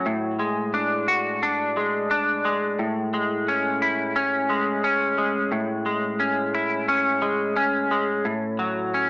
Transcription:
Already playing: F#3 C#4 D4
0.06 A2
0.39 G#3
0.74 D4
1.08 F#4
1.43 D4
1.77 G#3
2.11 D4
2.45 G#3
2.79 A2
3.14 G#3
3.48 C#4
3.82 E4
4.16 C#4
4.50 G#3
4.84 C#4
5.18 G#3
5.52 A2
5.86 G#3
6.20 C#4
6.55 E4
6.88 C#4
7.22 G#3
7.56 C#4
7.91 G#3
8.25 A2
8.59 F#3
8.94 C#4

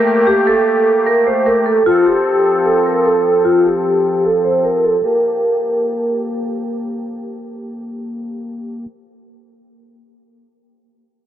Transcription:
Already playing: A3 A#3 G4
0.07 A#4
0.27 G4
0.47 A4
1.06 A#4
1.27 C5
1.46 A#4
1.66 A4
1.86 F3 C4 F4 A4
2.06 G4
2.65 A4
2.86 A#4
3.05 A4
3.25 A4
3.45 F4
3.65 G4
4.25 A4
4.44 C5
4.64 A#4
4.84 A4
5.04 A#3 G4 A#4 A5

